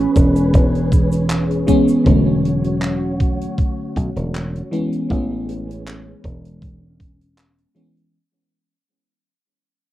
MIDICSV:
0, 0, Header, 1, 5, 480
1, 0, Start_track
1, 0, Key_signature, 3, "major"
1, 0, Tempo, 759494
1, 1301, Time_signature, 4, 2, 24, 8
1, 6273, End_track
2, 0, Start_track
2, 0, Title_t, "String machine"
2, 0, Program_c, 0, 50
2, 0, Note_on_c, 0, 68, 85
2, 0, Note_on_c, 0, 71, 78
2, 0, Note_on_c, 0, 73, 97
2, 1273, Note_off_c, 0, 73, 0
2, 1278, Note_off_c, 0, 71, 0
2, 1280, Note_off_c, 0, 68, 0
2, 1297, Note_on_c, 0, 73, 77
2, 1301, Note_on_c, 0, 66, 76
2, 2962, Note_off_c, 0, 73, 0
2, 2964, Note_off_c, 0, 66, 0
2, 2982, Note_on_c, 0, 68, 78
2, 2983, Note_on_c, 0, 71, 79
2, 2983, Note_on_c, 0, 73, 95
2, 5120, Note_off_c, 0, 68, 0
2, 5121, Note_off_c, 0, 71, 0
2, 5121, Note_off_c, 0, 73, 0
2, 6273, End_track
3, 0, Start_track
3, 0, Title_t, "FM electric piano"
3, 0, Program_c, 1, 5
3, 0, Control_c, 1, 64, 127
3, 0, Note_on_c, 1, 52, 86
3, 0, Note_on_c, 1, 56, 78
3, 0, Note_on_c, 1, 59, 77
3, 0, Note_on_c, 1, 61, 96
3, 1027, Note_off_c, 1, 52, 0
3, 1030, Note_off_c, 1, 56, 0
3, 1033, Note_off_c, 1, 59, 0
3, 1036, Note_off_c, 1, 61, 0
3, 1055, Note_on_c, 1, 52, 100
3, 1057, Note_on_c, 1, 56, 93
3, 1061, Note_on_c, 1, 59, 89
3, 1063, Note_on_c, 1, 61, 117
3, 1271, Note_off_c, 1, 52, 0
3, 1272, Note_off_c, 1, 56, 0
3, 1274, Note_off_c, 1, 59, 0
3, 1275, Note_off_c, 1, 61, 0
3, 1289, Note_on_c, 1, 50, 81
3, 1296, Note_on_c, 1, 54, 77
3, 1302, Note_on_c, 1, 57, 73
3, 1308, Note_on_c, 1, 61, 89
3, 1309, Control_c, 1, 64, 0
3, 1419, Control_c, 1, 64, 127
3, 2948, Note_off_c, 1, 50, 0
3, 2952, Note_off_c, 1, 54, 0
3, 2955, Note_off_c, 1, 57, 0
3, 2958, Note_off_c, 1, 61, 0
3, 2979, Note_on_c, 1, 52, 93
3, 2982, Note_on_c, 1, 56, 82
3, 2985, Note_on_c, 1, 59, 89
3, 2987, Note_on_c, 1, 61, 101
3, 2989, Control_c, 1, 64, 0
3, 3097, Control_c, 1, 64, 127
3, 3193, Note_off_c, 1, 52, 0
3, 3195, Note_off_c, 1, 56, 0
3, 3196, Note_off_c, 1, 59, 0
3, 3197, Note_off_c, 1, 61, 0
3, 3215, Note_on_c, 1, 52, 76
3, 3222, Note_on_c, 1, 56, 71
3, 3229, Note_on_c, 1, 59, 69
3, 3235, Note_on_c, 1, 61, 87
3, 4871, Note_off_c, 1, 52, 0
3, 4875, Note_off_c, 1, 56, 0
3, 4878, Note_off_c, 1, 59, 0
3, 4881, Note_off_c, 1, 61, 0
3, 4896, Note_on_c, 1, 52, 91
3, 4898, Note_on_c, 1, 56, 78
3, 4902, Note_on_c, 1, 59, 82
3, 4906, Note_on_c, 1, 61, 92
3, 5112, Note_off_c, 1, 52, 0
3, 5113, Note_off_c, 1, 56, 0
3, 5115, Note_off_c, 1, 59, 0
3, 5117, Note_off_c, 1, 61, 0
3, 5149, Control_c, 1, 64, 0
3, 6273, End_track
4, 0, Start_track
4, 0, Title_t, "Slap bass"
4, 0, Program_c, 2, 36
4, 100, Note_on_c, 2, 28, 88
4, 336, Note_off_c, 2, 28, 0
4, 340, Note_on_c, 2, 28, 83
4, 1231, Note_off_c, 2, 28, 0
4, 1302, Note_on_c, 2, 28, 94
4, 2192, Note_off_c, 2, 28, 0
4, 2505, Note_on_c, 2, 35, 92
4, 2582, Note_off_c, 2, 35, 0
4, 2630, Note_on_c, 2, 28, 88
4, 2912, Note_off_c, 2, 28, 0
4, 3226, Note_on_c, 2, 33, 98
4, 3874, Note_off_c, 2, 33, 0
4, 3945, Note_on_c, 2, 28, 81
4, 4834, Note_off_c, 2, 28, 0
4, 6273, End_track
5, 0, Start_track
5, 0, Title_t, "Drums"
5, 98, Note_on_c, 9, 42, 90
5, 100, Note_on_c, 9, 36, 109
5, 101, Note_on_c, 9, 69, 76
5, 161, Note_off_c, 9, 42, 0
5, 163, Note_off_c, 9, 36, 0
5, 164, Note_off_c, 9, 69, 0
5, 226, Note_on_c, 9, 42, 68
5, 228, Note_on_c, 9, 69, 51
5, 289, Note_off_c, 9, 42, 0
5, 291, Note_off_c, 9, 69, 0
5, 340, Note_on_c, 9, 36, 114
5, 340, Note_on_c, 9, 69, 45
5, 343, Note_on_c, 9, 42, 89
5, 403, Note_off_c, 9, 69, 0
5, 404, Note_off_c, 9, 36, 0
5, 406, Note_off_c, 9, 42, 0
5, 474, Note_on_c, 9, 42, 52
5, 537, Note_off_c, 9, 42, 0
5, 581, Note_on_c, 9, 36, 101
5, 581, Note_on_c, 9, 42, 90
5, 585, Note_on_c, 9, 69, 81
5, 644, Note_off_c, 9, 36, 0
5, 645, Note_off_c, 9, 42, 0
5, 649, Note_off_c, 9, 69, 0
5, 708, Note_on_c, 9, 69, 63
5, 710, Note_on_c, 9, 42, 69
5, 771, Note_off_c, 9, 69, 0
5, 773, Note_off_c, 9, 42, 0
5, 821, Note_on_c, 9, 39, 111
5, 821, Note_on_c, 9, 42, 79
5, 826, Note_on_c, 9, 69, 45
5, 884, Note_off_c, 9, 39, 0
5, 884, Note_off_c, 9, 42, 0
5, 889, Note_off_c, 9, 69, 0
5, 952, Note_on_c, 9, 42, 54
5, 1015, Note_off_c, 9, 42, 0
5, 1061, Note_on_c, 9, 42, 91
5, 1062, Note_on_c, 9, 36, 64
5, 1062, Note_on_c, 9, 69, 88
5, 1124, Note_off_c, 9, 42, 0
5, 1125, Note_off_c, 9, 36, 0
5, 1126, Note_off_c, 9, 69, 0
5, 1189, Note_on_c, 9, 69, 59
5, 1193, Note_on_c, 9, 42, 66
5, 1252, Note_off_c, 9, 69, 0
5, 1256, Note_off_c, 9, 42, 0
5, 1300, Note_on_c, 9, 42, 81
5, 1302, Note_on_c, 9, 36, 110
5, 1364, Note_off_c, 9, 42, 0
5, 1366, Note_off_c, 9, 36, 0
5, 1548, Note_on_c, 9, 42, 88
5, 1612, Note_off_c, 9, 42, 0
5, 1670, Note_on_c, 9, 42, 70
5, 1733, Note_off_c, 9, 42, 0
5, 1782, Note_on_c, 9, 39, 112
5, 1786, Note_on_c, 9, 42, 85
5, 1845, Note_off_c, 9, 39, 0
5, 1849, Note_off_c, 9, 42, 0
5, 2023, Note_on_c, 9, 36, 105
5, 2023, Note_on_c, 9, 42, 77
5, 2087, Note_off_c, 9, 36, 0
5, 2087, Note_off_c, 9, 42, 0
5, 2157, Note_on_c, 9, 42, 66
5, 2220, Note_off_c, 9, 42, 0
5, 2263, Note_on_c, 9, 36, 119
5, 2263, Note_on_c, 9, 42, 81
5, 2326, Note_off_c, 9, 42, 0
5, 2327, Note_off_c, 9, 36, 0
5, 2504, Note_on_c, 9, 36, 59
5, 2507, Note_on_c, 9, 42, 95
5, 2567, Note_off_c, 9, 36, 0
5, 2571, Note_off_c, 9, 42, 0
5, 2632, Note_on_c, 9, 42, 63
5, 2695, Note_off_c, 9, 42, 0
5, 2747, Note_on_c, 9, 42, 84
5, 2750, Note_on_c, 9, 39, 103
5, 2810, Note_off_c, 9, 42, 0
5, 2813, Note_off_c, 9, 39, 0
5, 2879, Note_on_c, 9, 42, 51
5, 2942, Note_off_c, 9, 42, 0
5, 2986, Note_on_c, 9, 42, 93
5, 3050, Note_off_c, 9, 42, 0
5, 3111, Note_on_c, 9, 42, 69
5, 3175, Note_off_c, 9, 42, 0
5, 3225, Note_on_c, 9, 36, 113
5, 3234, Note_on_c, 9, 42, 75
5, 3288, Note_off_c, 9, 36, 0
5, 3297, Note_off_c, 9, 42, 0
5, 3467, Note_on_c, 9, 42, 95
5, 3530, Note_off_c, 9, 42, 0
5, 3606, Note_on_c, 9, 42, 64
5, 3669, Note_off_c, 9, 42, 0
5, 3709, Note_on_c, 9, 42, 78
5, 3712, Note_on_c, 9, 39, 112
5, 3772, Note_off_c, 9, 42, 0
5, 3775, Note_off_c, 9, 39, 0
5, 3944, Note_on_c, 9, 36, 101
5, 3948, Note_on_c, 9, 42, 77
5, 4007, Note_off_c, 9, 36, 0
5, 4011, Note_off_c, 9, 42, 0
5, 4076, Note_on_c, 9, 42, 66
5, 4139, Note_off_c, 9, 42, 0
5, 4184, Note_on_c, 9, 36, 118
5, 4188, Note_on_c, 9, 42, 79
5, 4247, Note_off_c, 9, 36, 0
5, 4251, Note_off_c, 9, 42, 0
5, 4424, Note_on_c, 9, 36, 97
5, 4426, Note_on_c, 9, 42, 82
5, 4487, Note_off_c, 9, 36, 0
5, 4490, Note_off_c, 9, 42, 0
5, 4556, Note_on_c, 9, 42, 60
5, 4620, Note_off_c, 9, 42, 0
5, 4665, Note_on_c, 9, 39, 112
5, 4668, Note_on_c, 9, 42, 82
5, 4728, Note_off_c, 9, 39, 0
5, 4731, Note_off_c, 9, 42, 0
5, 4792, Note_on_c, 9, 42, 55
5, 4855, Note_off_c, 9, 42, 0
5, 4901, Note_on_c, 9, 42, 81
5, 4964, Note_off_c, 9, 42, 0
5, 6273, End_track
0, 0, End_of_file